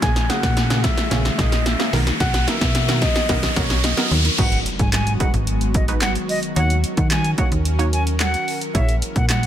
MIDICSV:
0, 0, Header, 1, 10, 480
1, 0, Start_track
1, 0, Key_signature, 5, "minor"
1, 0, Tempo, 545455
1, 18, Time_signature, 4, 2, 24, 8
1, 8330, End_track
2, 0, Start_track
2, 0, Title_t, "Flute"
2, 0, Program_c, 0, 73
2, 3858, Note_on_c, 0, 78, 95
2, 4033, Note_off_c, 0, 78, 0
2, 4223, Note_on_c, 0, 80, 77
2, 4309, Note_off_c, 0, 80, 0
2, 4342, Note_on_c, 0, 80, 89
2, 4516, Note_off_c, 0, 80, 0
2, 4583, Note_on_c, 0, 78, 84
2, 4669, Note_off_c, 0, 78, 0
2, 5061, Note_on_c, 0, 75, 79
2, 5148, Note_off_c, 0, 75, 0
2, 5298, Note_on_c, 0, 78, 87
2, 5386, Note_off_c, 0, 78, 0
2, 5539, Note_on_c, 0, 75, 89
2, 5626, Note_off_c, 0, 75, 0
2, 5778, Note_on_c, 0, 78, 115
2, 5953, Note_off_c, 0, 78, 0
2, 6141, Note_on_c, 0, 78, 80
2, 6227, Note_off_c, 0, 78, 0
2, 6258, Note_on_c, 0, 80, 92
2, 6433, Note_off_c, 0, 80, 0
2, 6495, Note_on_c, 0, 78, 87
2, 6584, Note_off_c, 0, 78, 0
2, 6976, Note_on_c, 0, 80, 85
2, 7065, Note_off_c, 0, 80, 0
2, 7221, Note_on_c, 0, 78, 90
2, 7558, Note_off_c, 0, 78, 0
2, 7701, Note_on_c, 0, 76, 107
2, 7875, Note_off_c, 0, 76, 0
2, 8057, Note_on_c, 0, 78, 83
2, 8145, Note_off_c, 0, 78, 0
2, 8180, Note_on_c, 0, 78, 91
2, 8330, Note_off_c, 0, 78, 0
2, 8330, End_track
3, 0, Start_track
3, 0, Title_t, "Soft synth lead"
3, 0, Program_c, 1, 80
3, 18, Note_on_c, 1, 80, 111
3, 258, Note_on_c, 1, 78, 107
3, 272, Note_off_c, 1, 80, 0
3, 733, Note_on_c, 1, 76, 103
3, 746, Note_off_c, 1, 78, 0
3, 1216, Note_on_c, 1, 75, 88
3, 1229, Note_off_c, 1, 76, 0
3, 1457, Note_on_c, 1, 76, 85
3, 1470, Note_off_c, 1, 75, 0
3, 1698, Note_off_c, 1, 76, 0
3, 1937, Note_on_c, 1, 78, 114
3, 2181, Note_on_c, 1, 76, 106
3, 2195, Note_off_c, 1, 78, 0
3, 2656, Note_on_c, 1, 75, 108
3, 2669, Note_off_c, 1, 76, 0
3, 3140, Note_on_c, 1, 73, 91
3, 3153, Note_off_c, 1, 75, 0
3, 3377, Note_on_c, 1, 75, 91
3, 3390, Note_off_c, 1, 73, 0
3, 3618, Note_off_c, 1, 75, 0
3, 8330, End_track
4, 0, Start_track
4, 0, Title_t, "Synth pluck"
4, 0, Program_c, 2, 84
4, 17, Note_on_c, 2, 49, 79
4, 18, Note_on_c, 2, 58, 70
4, 21, Note_on_c, 2, 68, 88
4, 210, Note_off_c, 2, 49, 0
4, 211, Note_off_c, 2, 58, 0
4, 212, Note_off_c, 2, 68, 0
4, 258, Note_on_c, 2, 49, 77
4, 259, Note_on_c, 2, 58, 74
4, 262, Note_on_c, 2, 68, 88
4, 547, Note_off_c, 2, 49, 0
4, 548, Note_off_c, 2, 58, 0
4, 549, Note_off_c, 2, 68, 0
4, 617, Note_on_c, 2, 49, 80
4, 619, Note_on_c, 2, 58, 75
4, 621, Note_on_c, 2, 68, 85
4, 906, Note_off_c, 2, 49, 0
4, 908, Note_off_c, 2, 58, 0
4, 909, Note_off_c, 2, 68, 0
4, 975, Note_on_c, 2, 49, 80
4, 976, Note_on_c, 2, 58, 74
4, 979, Note_on_c, 2, 61, 86
4, 1170, Note_off_c, 2, 49, 0
4, 1170, Note_off_c, 2, 58, 0
4, 1171, Note_off_c, 2, 61, 0
4, 1217, Note_on_c, 2, 49, 77
4, 1220, Note_on_c, 2, 58, 72
4, 1221, Note_on_c, 2, 68, 82
4, 1507, Note_off_c, 2, 49, 0
4, 1508, Note_off_c, 2, 58, 0
4, 1508, Note_off_c, 2, 68, 0
4, 1578, Note_on_c, 2, 49, 80
4, 1580, Note_on_c, 2, 58, 73
4, 1581, Note_on_c, 2, 68, 85
4, 1698, Note_off_c, 2, 49, 0
4, 1699, Note_off_c, 2, 58, 0
4, 1700, Note_off_c, 2, 68, 0
4, 1700, Note_on_c, 2, 51, 83
4, 1701, Note_on_c, 2, 59, 76
4, 1704, Note_on_c, 2, 70, 92
4, 2084, Note_off_c, 2, 51, 0
4, 2085, Note_off_c, 2, 59, 0
4, 2086, Note_off_c, 2, 70, 0
4, 2178, Note_on_c, 2, 51, 77
4, 2179, Note_on_c, 2, 59, 70
4, 2181, Note_on_c, 2, 70, 86
4, 2467, Note_off_c, 2, 51, 0
4, 2468, Note_off_c, 2, 59, 0
4, 2469, Note_off_c, 2, 70, 0
4, 2536, Note_on_c, 2, 51, 82
4, 2538, Note_on_c, 2, 59, 74
4, 2541, Note_on_c, 2, 70, 87
4, 2826, Note_off_c, 2, 51, 0
4, 2827, Note_off_c, 2, 59, 0
4, 2829, Note_off_c, 2, 70, 0
4, 2896, Note_on_c, 2, 51, 82
4, 2899, Note_on_c, 2, 59, 73
4, 2902, Note_on_c, 2, 70, 86
4, 3090, Note_off_c, 2, 51, 0
4, 3091, Note_off_c, 2, 59, 0
4, 3093, Note_off_c, 2, 70, 0
4, 3137, Note_on_c, 2, 51, 78
4, 3140, Note_on_c, 2, 59, 69
4, 3142, Note_on_c, 2, 70, 81
4, 3427, Note_off_c, 2, 51, 0
4, 3428, Note_off_c, 2, 59, 0
4, 3429, Note_off_c, 2, 70, 0
4, 3494, Note_on_c, 2, 51, 80
4, 3497, Note_on_c, 2, 59, 75
4, 3498, Note_on_c, 2, 70, 88
4, 3785, Note_off_c, 2, 51, 0
4, 3786, Note_off_c, 2, 59, 0
4, 3787, Note_off_c, 2, 70, 0
4, 3857, Note_on_c, 2, 56, 80
4, 3859, Note_on_c, 2, 63, 75
4, 3860, Note_on_c, 2, 66, 74
4, 3861, Note_on_c, 2, 71, 84
4, 4436, Note_off_c, 2, 56, 0
4, 4436, Note_off_c, 2, 63, 0
4, 4437, Note_off_c, 2, 66, 0
4, 4437, Note_off_c, 2, 71, 0
4, 4576, Note_on_c, 2, 56, 78
4, 4577, Note_on_c, 2, 63, 70
4, 4579, Note_on_c, 2, 66, 70
4, 4580, Note_on_c, 2, 71, 83
4, 5059, Note_off_c, 2, 56, 0
4, 5059, Note_off_c, 2, 63, 0
4, 5060, Note_off_c, 2, 66, 0
4, 5061, Note_off_c, 2, 71, 0
4, 5176, Note_on_c, 2, 56, 82
4, 5178, Note_on_c, 2, 63, 74
4, 5179, Note_on_c, 2, 66, 70
4, 5179, Note_on_c, 2, 71, 92
4, 5659, Note_off_c, 2, 56, 0
4, 5660, Note_off_c, 2, 63, 0
4, 5660, Note_off_c, 2, 66, 0
4, 5660, Note_off_c, 2, 71, 0
4, 5773, Note_on_c, 2, 58, 79
4, 5776, Note_on_c, 2, 63, 72
4, 5776, Note_on_c, 2, 66, 73
4, 5778, Note_on_c, 2, 73, 85
4, 6353, Note_off_c, 2, 58, 0
4, 6355, Note_off_c, 2, 63, 0
4, 6355, Note_off_c, 2, 66, 0
4, 6356, Note_off_c, 2, 73, 0
4, 6493, Note_on_c, 2, 58, 76
4, 6495, Note_on_c, 2, 63, 71
4, 6496, Note_on_c, 2, 66, 70
4, 6497, Note_on_c, 2, 73, 82
4, 6784, Note_off_c, 2, 58, 0
4, 6785, Note_off_c, 2, 63, 0
4, 6786, Note_off_c, 2, 66, 0
4, 6787, Note_off_c, 2, 73, 0
4, 6852, Note_on_c, 2, 58, 79
4, 6854, Note_on_c, 2, 63, 72
4, 6856, Note_on_c, 2, 66, 74
4, 6856, Note_on_c, 2, 73, 90
4, 7529, Note_off_c, 2, 58, 0
4, 7530, Note_off_c, 2, 63, 0
4, 7531, Note_off_c, 2, 66, 0
4, 7531, Note_off_c, 2, 73, 0
4, 7696, Note_on_c, 2, 58, 79
4, 7697, Note_on_c, 2, 64, 73
4, 7698, Note_on_c, 2, 68, 73
4, 7700, Note_on_c, 2, 73, 86
4, 8275, Note_off_c, 2, 58, 0
4, 8276, Note_off_c, 2, 64, 0
4, 8276, Note_off_c, 2, 68, 0
4, 8277, Note_off_c, 2, 73, 0
4, 8330, End_track
5, 0, Start_track
5, 0, Title_t, "Analog synth pad"
5, 0, Program_c, 3, 89
5, 0, Note_on_c, 3, 58, 76
5, 0, Note_on_c, 3, 61, 76
5, 18, Note_on_c, 3, 56, 73
5, 20, Note_on_c, 3, 52, 79
5, 20, Note_on_c, 3, 68, 84
5, 1662, Note_off_c, 3, 58, 0
5, 1663, Note_off_c, 3, 61, 0
5, 1681, Note_off_c, 3, 56, 0
5, 1682, Note_off_c, 3, 68, 0
5, 1683, Note_off_c, 3, 52, 0
5, 1699, Note_on_c, 3, 51, 83
5, 1700, Note_on_c, 3, 59, 77
5, 1700, Note_on_c, 3, 66, 91
5, 1701, Note_on_c, 3, 70, 71
5, 1702, Note_on_c, 3, 54, 71
5, 3837, Note_off_c, 3, 51, 0
5, 3838, Note_off_c, 3, 59, 0
5, 3838, Note_off_c, 3, 66, 0
5, 3838, Note_off_c, 3, 70, 0
5, 3839, Note_off_c, 3, 54, 0
5, 3854, Note_on_c, 3, 59, 73
5, 3855, Note_on_c, 3, 54, 74
5, 3856, Note_on_c, 3, 56, 73
5, 3856, Note_on_c, 3, 66, 86
5, 3857, Note_on_c, 3, 51, 77
5, 5757, Note_off_c, 3, 59, 0
5, 5758, Note_off_c, 3, 56, 0
5, 5774, Note_on_c, 3, 61, 75
5, 5774, Note_on_c, 3, 70, 77
5, 7662, Note_off_c, 3, 51, 0
5, 7662, Note_off_c, 3, 54, 0
5, 7662, Note_off_c, 3, 66, 0
5, 7677, Note_off_c, 3, 61, 0
5, 7696, Note_on_c, 3, 56, 77
5, 7697, Note_on_c, 3, 52, 75
5, 7697, Note_on_c, 3, 64, 91
5, 7698, Note_on_c, 3, 49, 79
5, 8330, Note_off_c, 3, 49, 0
5, 8330, Note_off_c, 3, 52, 0
5, 8330, Note_off_c, 3, 56, 0
5, 8330, Note_off_c, 3, 64, 0
5, 8330, Note_off_c, 3, 70, 0
5, 8330, End_track
6, 0, Start_track
6, 0, Title_t, "Synth arpeggio sound"
6, 0, Program_c, 4, 84
6, 15, Note_on_c, 4, 52, 92
6, 125, Note_off_c, 4, 52, 0
6, 137, Note_on_c, 4, 52, 72
6, 246, Note_off_c, 4, 52, 0
6, 255, Note_on_c, 4, 58, 89
6, 365, Note_off_c, 4, 58, 0
6, 617, Note_on_c, 4, 61, 85
6, 726, Note_off_c, 4, 61, 0
6, 738, Note_on_c, 4, 64, 86
6, 847, Note_off_c, 4, 64, 0
6, 980, Note_on_c, 4, 52, 92
6, 1088, Note_off_c, 4, 52, 0
6, 1098, Note_on_c, 4, 52, 72
6, 1207, Note_off_c, 4, 52, 0
6, 1220, Note_on_c, 4, 58, 86
6, 1328, Note_off_c, 4, 58, 0
6, 1340, Note_on_c, 4, 52, 77
6, 1448, Note_off_c, 4, 52, 0
6, 1461, Note_on_c, 4, 58, 91
6, 1568, Note_off_c, 4, 58, 0
6, 1580, Note_on_c, 4, 61, 82
6, 1687, Note_off_c, 4, 61, 0
6, 1701, Note_on_c, 4, 59, 84
6, 1808, Note_off_c, 4, 59, 0
6, 1821, Note_on_c, 4, 63, 85
6, 1928, Note_off_c, 4, 63, 0
6, 1941, Note_on_c, 4, 51, 98
6, 2048, Note_off_c, 4, 51, 0
6, 2061, Note_on_c, 4, 51, 77
6, 2168, Note_off_c, 4, 51, 0
6, 2183, Note_on_c, 4, 58, 89
6, 2289, Note_off_c, 4, 58, 0
6, 2543, Note_on_c, 4, 59, 80
6, 2649, Note_off_c, 4, 59, 0
6, 2662, Note_on_c, 4, 63, 86
6, 2769, Note_off_c, 4, 63, 0
6, 2901, Note_on_c, 4, 51, 88
6, 3008, Note_off_c, 4, 51, 0
6, 3020, Note_on_c, 4, 51, 74
6, 3128, Note_off_c, 4, 51, 0
6, 3142, Note_on_c, 4, 58, 82
6, 3249, Note_off_c, 4, 58, 0
6, 3261, Note_on_c, 4, 51, 78
6, 3368, Note_off_c, 4, 51, 0
6, 3382, Note_on_c, 4, 58, 92
6, 3489, Note_off_c, 4, 58, 0
6, 3501, Note_on_c, 4, 59, 83
6, 3608, Note_off_c, 4, 59, 0
6, 3622, Note_on_c, 4, 59, 88
6, 3729, Note_off_c, 4, 59, 0
6, 3744, Note_on_c, 4, 63, 79
6, 3850, Note_off_c, 4, 63, 0
6, 8330, End_track
7, 0, Start_track
7, 0, Title_t, "FM bass"
7, 0, Program_c, 5, 39
7, 20, Note_on_c, 5, 34, 110
7, 266, Note_off_c, 5, 34, 0
7, 380, Note_on_c, 5, 46, 97
7, 790, Note_off_c, 5, 46, 0
7, 979, Note_on_c, 5, 34, 100
7, 1143, Note_off_c, 5, 34, 0
7, 1220, Note_on_c, 5, 34, 101
7, 1547, Note_off_c, 5, 34, 0
7, 1699, Note_on_c, 5, 35, 93
7, 1863, Note_off_c, 5, 35, 0
7, 1938, Note_on_c, 5, 35, 110
7, 2184, Note_off_c, 5, 35, 0
7, 2299, Note_on_c, 5, 47, 97
7, 2709, Note_off_c, 5, 47, 0
7, 2898, Note_on_c, 5, 35, 98
7, 3062, Note_off_c, 5, 35, 0
7, 3138, Note_on_c, 5, 35, 98
7, 3466, Note_off_c, 5, 35, 0
7, 3618, Note_on_c, 5, 39, 94
7, 3782, Note_off_c, 5, 39, 0
7, 3859, Note_on_c, 5, 32, 106
7, 4105, Note_off_c, 5, 32, 0
7, 4220, Note_on_c, 5, 44, 86
7, 4547, Note_off_c, 5, 44, 0
7, 4697, Note_on_c, 5, 32, 106
7, 5435, Note_off_c, 5, 32, 0
7, 5776, Note_on_c, 5, 39, 103
7, 6023, Note_off_c, 5, 39, 0
7, 6137, Note_on_c, 5, 51, 88
7, 6466, Note_off_c, 5, 51, 0
7, 6616, Note_on_c, 5, 39, 100
7, 7355, Note_off_c, 5, 39, 0
7, 7698, Note_on_c, 5, 34, 100
7, 7944, Note_off_c, 5, 34, 0
7, 8060, Note_on_c, 5, 46, 84
7, 8330, Note_off_c, 5, 46, 0
7, 8330, End_track
8, 0, Start_track
8, 0, Title_t, "Impact"
8, 0, Program_c, 6, 103
8, 3860, Note_on_c, 6, 60, 88
8, 5779, Note_off_c, 6, 60, 0
8, 8330, End_track
9, 0, Start_track
9, 0, Title_t, "Riser"
9, 0, Program_c, 7, 103
9, 0, Note_on_c, 7, 60, 82
9, 3858, Note_off_c, 7, 60, 0
9, 8330, End_track
10, 0, Start_track
10, 0, Title_t, "Drums"
10, 20, Note_on_c, 9, 36, 115
10, 21, Note_on_c, 9, 38, 101
10, 22, Note_on_c, 9, 42, 98
10, 108, Note_off_c, 9, 36, 0
10, 109, Note_off_c, 9, 38, 0
10, 110, Note_off_c, 9, 42, 0
10, 141, Note_on_c, 9, 38, 102
10, 142, Note_on_c, 9, 42, 59
10, 229, Note_off_c, 9, 38, 0
10, 230, Note_off_c, 9, 42, 0
10, 261, Note_on_c, 9, 38, 102
10, 262, Note_on_c, 9, 42, 81
10, 349, Note_off_c, 9, 38, 0
10, 350, Note_off_c, 9, 42, 0
10, 380, Note_on_c, 9, 36, 99
10, 381, Note_on_c, 9, 38, 98
10, 382, Note_on_c, 9, 42, 59
10, 468, Note_off_c, 9, 36, 0
10, 469, Note_off_c, 9, 38, 0
10, 470, Note_off_c, 9, 42, 0
10, 500, Note_on_c, 9, 38, 101
10, 500, Note_on_c, 9, 42, 101
10, 588, Note_off_c, 9, 38, 0
10, 588, Note_off_c, 9, 42, 0
10, 619, Note_on_c, 9, 38, 103
10, 619, Note_on_c, 9, 42, 62
10, 707, Note_off_c, 9, 38, 0
10, 707, Note_off_c, 9, 42, 0
10, 738, Note_on_c, 9, 42, 75
10, 739, Note_on_c, 9, 36, 97
10, 740, Note_on_c, 9, 38, 105
10, 826, Note_off_c, 9, 42, 0
10, 827, Note_off_c, 9, 36, 0
10, 828, Note_off_c, 9, 38, 0
10, 858, Note_on_c, 9, 42, 50
10, 859, Note_on_c, 9, 38, 102
10, 946, Note_off_c, 9, 42, 0
10, 947, Note_off_c, 9, 38, 0
10, 979, Note_on_c, 9, 42, 88
10, 980, Note_on_c, 9, 38, 110
10, 1067, Note_off_c, 9, 42, 0
10, 1068, Note_off_c, 9, 38, 0
10, 1102, Note_on_c, 9, 38, 105
10, 1102, Note_on_c, 9, 42, 53
10, 1190, Note_off_c, 9, 38, 0
10, 1190, Note_off_c, 9, 42, 0
10, 1220, Note_on_c, 9, 36, 102
10, 1221, Note_on_c, 9, 38, 108
10, 1222, Note_on_c, 9, 42, 80
10, 1308, Note_off_c, 9, 36, 0
10, 1309, Note_off_c, 9, 38, 0
10, 1310, Note_off_c, 9, 42, 0
10, 1339, Note_on_c, 9, 38, 106
10, 1341, Note_on_c, 9, 42, 57
10, 1427, Note_off_c, 9, 38, 0
10, 1429, Note_off_c, 9, 42, 0
10, 1460, Note_on_c, 9, 38, 105
10, 1461, Note_on_c, 9, 42, 95
10, 1548, Note_off_c, 9, 38, 0
10, 1549, Note_off_c, 9, 42, 0
10, 1581, Note_on_c, 9, 38, 111
10, 1582, Note_on_c, 9, 42, 52
10, 1669, Note_off_c, 9, 38, 0
10, 1670, Note_off_c, 9, 42, 0
10, 1700, Note_on_c, 9, 38, 106
10, 1703, Note_on_c, 9, 46, 75
10, 1788, Note_off_c, 9, 38, 0
10, 1791, Note_off_c, 9, 46, 0
10, 1820, Note_on_c, 9, 38, 106
10, 1821, Note_on_c, 9, 42, 55
10, 1908, Note_off_c, 9, 38, 0
10, 1909, Note_off_c, 9, 42, 0
10, 1939, Note_on_c, 9, 36, 115
10, 1939, Note_on_c, 9, 38, 108
10, 1939, Note_on_c, 9, 42, 95
10, 2027, Note_off_c, 9, 36, 0
10, 2027, Note_off_c, 9, 38, 0
10, 2027, Note_off_c, 9, 42, 0
10, 2059, Note_on_c, 9, 38, 109
10, 2060, Note_on_c, 9, 42, 60
10, 2147, Note_off_c, 9, 38, 0
10, 2148, Note_off_c, 9, 42, 0
10, 2179, Note_on_c, 9, 38, 110
10, 2180, Note_on_c, 9, 42, 82
10, 2267, Note_off_c, 9, 38, 0
10, 2268, Note_off_c, 9, 42, 0
10, 2299, Note_on_c, 9, 38, 108
10, 2300, Note_on_c, 9, 36, 104
10, 2300, Note_on_c, 9, 42, 57
10, 2387, Note_off_c, 9, 38, 0
10, 2388, Note_off_c, 9, 36, 0
10, 2388, Note_off_c, 9, 42, 0
10, 2419, Note_on_c, 9, 38, 111
10, 2419, Note_on_c, 9, 42, 109
10, 2507, Note_off_c, 9, 38, 0
10, 2507, Note_off_c, 9, 42, 0
10, 2540, Note_on_c, 9, 38, 117
10, 2540, Note_on_c, 9, 42, 62
10, 2628, Note_off_c, 9, 38, 0
10, 2628, Note_off_c, 9, 42, 0
10, 2655, Note_on_c, 9, 42, 76
10, 2657, Note_on_c, 9, 38, 114
10, 2658, Note_on_c, 9, 36, 102
10, 2743, Note_off_c, 9, 42, 0
10, 2745, Note_off_c, 9, 38, 0
10, 2746, Note_off_c, 9, 36, 0
10, 2777, Note_on_c, 9, 38, 111
10, 2777, Note_on_c, 9, 42, 49
10, 2865, Note_off_c, 9, 38, 0
10, 2865, Note_off_c, 9, 42, 0
10, 2895, Note_on_c, 9, 42, 92
10, 2897, Note_on_c, 9, 38, 110
10, 2898, Note_on_c, 9, 36, 101
10, 2983, Note_off_c, 9, 42, 0
10, 2985, Note_off_c, 9, 38, 0
10, 2986, Note_off_c, 9, 36, 0
10, 3018, Note_on_c, 9, 38, 115
10, 3018, Note_on_c, 9, 42, 53
10, 3106, Note_off_c, 9, 38, 0
10, 3106, Note_off_c, 9, 42, 0
10, 3136, Note_on_c, 9, 38, 116
10, 3136, Note_on_c, 9, 42, 79
10, 3138, Note_on_c, 9, 36, 113
10, 3224, Note_off_c, 9, 38, 0
10, 3224, Note_off_c, 9, 42, 0
10, 3226, Note_off_c, 9, 36, 0
10, 3257, Note_on_c, 9, 38, 108
10, 3259, Note_on_c, 9, 42, 58
10, 3345, Note_off_c, 9, 38, 0
10, 3347, Note_off_c, 9, 42, 0
10, 3377, Note_on_c, 9, 38, 119
10, 3378, Note_on_c, 9, 42, 94
10, 3465, Note_off_c, 9, 38, 0
10, 3466, Note_off_c, 9, 42, 0
10, 3497, Note_on_c, 9, 38, 113
10, 3498, Note_on_c, 9, 42, 51
10, 3585, Note_off_c, 9, 38, 0
10, 3586, Note_off_c, 9, 42, 0
10, 3618, Note_on_c, 9, 46, 80
10, 3706, Note_off_c, 9, 46, 0
10, 3739, Note_on_c, 9, 42, 57
10, 3827, Note_off_c, 9, 42, 0
10, 3857, Note_on_c, 9, 49, 108
10, 3858, Note_on_c, 9, 36, 116
10, 3858, Note_on_c, 9, 42, 97
10, 3945, Note_off_c, 9, 49, 0
10, 3946, Note_off_c, 9, 36, 0
10, 3946, Note_off_c, 9, 42, 0
10, 3978, Note_on_c, 9, 42, 60
10, 4066, Note_off_c, 9, 42, 0
10, 4101, Note_on_c, 9, 42, 80
10, 4189, Note_off_c, 9, 42, 0
10, 4218, Note_on_c, 9, 42, 59
10, 4219, Note_on_c, 9, 36, 98
10, 4306, Note_off_c, 9, 42, 0
10, 4307, Note_off_c, 9, 36, 0
10, 4338, Note_on_c, 9, 42, 106
10, 4340, Note_on_c, 9, 39, 127
10, 4342, Note_on_c, 9, 38, 99
10, 4426, Note_off_c, 9, 42, 0
10, 4428, Note_off_c, 9, 39, 0
10, 4430, Note_off_c, 9, 38, 0
10, 4460, Note_on_c, 9, 42, 61
10, 4548, Note_off_c, 9, 42, 0
10, 4577, Note_on_c, 9, 42, 79
10, 4578, Note_on_c, 9, 36, 98
10, 4665, Note_off_c, 9, 42, 0
10, 4666, Note_off_c, 9, 36, 0
10, 4697, Note_on_c, 9, 42, 50
10, 4785, Note_off_c, 9, 42, 0
10, 4815, Note_on_c, 9, 42, 86
10, 4903, Note_off_c, 9, 42, 0
10, 4937, Note_on_c, 9, 42, 52
10, 5025, Note_off_c, 9, 42, 0
10, 5055, Note_on_c, 9, 42, 85
10, 5057, Note_on_c, 9, 36, 112
10, 5143, Note_off_c, 9, 42, 0
10, 5145, Note_off_c, 9, 36, 0
10, 5176, Note_on_c, 9, 42, 59
10, 5264, Note_off_c, 9, 42, 0
10, 5293, Note_on_c, 9, 39, 118
10, 5294, Note_on_c, 9, 38, 94
10, 5295, Note_on_c, 9, 42, 94
10, 5381, Note_off_c, 9, 39, 0
10, 5382, Note_off_c, 9, 38, 0
10, 5383, Note_off_c, 9, 42, 0
10, 5416, Note_on_c, 9, 42, 52
10, 5504, Note_off_c, 9, 42, 0
10, 5537, Note_on_c, 9, 46, 79
10, 5625, Note_off_c, 9, 46, 0
10, 5656, Note_on_c, 9, 42, 54
10, 5744, Note_off_c, 9, 42, 0
10, 5776, Note_on_c, 9, 42, 98
10, 5864, Note_off_c, 9, 42, 0
10, 5897, Note_on_c, 9, 42, 63
10, 5985, Note_off_c, 9, 42, 0
10, 6017, Note_on_c, 9, 42, 83
10, 6105, Note_off_c, 9, 42, 0
10, 6136, Note_on_c, 9, 42, 61
10, 6138, Note_on_c, 9, 36, 102
10, 6224, Note_off_c, 9, 42, 0
10, 6226, Note_off_c, 9, 36, 0
10, 6254, Note_on_c, 9, 42, 107
10, 6257, Note_on_c, 9, 39, 126
10, 6259, Note_on_c, 9, 38, 96
10, 6342, Note_off_c, 9, 42, 0
10, 6345, Note_off_c, 9, 39, 0
10, 6347, Note_off_c, 9, 38, 0
10, 6375, Note_on_c, 9, 42, 58
10, 6463, Note_off_c, 9, 42, 0
10, 6493, Note_on_c, 9, 42, 77
10, 6496, Note_on_c, 9, 36, 94
10, 6581, Note_off_c, 9, 42, 0
10, 6584, Note_off_c, 9, 36, 0
10, 6615, Note_on_c, 9, 42, 50
10, 6703, Note_off_c, 9, 42, 0
10, 6736, Note_on_c, 9, 42, 86
10, 6824, Note_off_c, 9, 42, 0
10, 6858, Note_on_c, 9, 42, 55
10, 6946, Note_off_c, 9, 42, 0
10, 6979, Note_on_c, 9, 42, 84
10, 7067, Note_off_c, 9, 42, 0
10, 7100, Note_on_c, 9, 42, 61
10, 7188, Note_off_c, 9, 42, 0
10, 7216, Note_on_c, 9, 39, 117
10, 7218, Note_on_c, 9, 38, 96
10, 7219, Note_on_c, 9, 42, 93
10, 7304, Note_off_c, 9, 39, 0
10, 7306, Note_off_c, 9, 38, 0
10, 7307, Note_off_c, 9, 42, 0
10, 7339, Note_on_c, 9, 42, 51
10, 7427, Note_off_c, 9, 42, 0
10, 7462, Note_on_c, 9, 46, 78
10, 7550, Note_off_c, 9, 46, 0
10, 7580, Note_on_c, 9, 42, 58
10, 7668, Note_off_c, 9, 42, 0
10, 7698, Note_on_c, 9, 36, 120
10, 7699, Note_on_c, 9, 42, 93
10, 7786, Note_off_c, 9, 36, 0
10, 7787, Note_off_c, 9, 42, 0
10, 7819, Note_on_c, 9, 42, 60
10, 7907, Note_off_c, 9, 42, 0
10, 7939, Note_on_c, 9, 42, 83
10, 8027, Note_off_c, 9, 42, 0
10, 8059, Note_on_c, 9, 36, 99
10, 8059, Note_on_c, 9, 42, 62
10, 8147, Note_off_c, 9, 36, 0
10, 8147, Note_off_c, 9, 42, 0
10, 8179, Note_on_c, 9, 42, 104
10, 8181, Note_on_c, 9, 39, 127
10, 8183, Note_on_c, 9, 38, 100
10, 8267, Note_off_c, 9, 42, 0
10, 8269, Note_off_c, 9, 39, 0
10, 8271, Note_off_c, 9, 38, 0
10, 8300, Note_on_c, 9, 42, 58
10, 8330, Note_off_c, 9, 42, 0
10, 8330, End_track
0, 0, End_of_file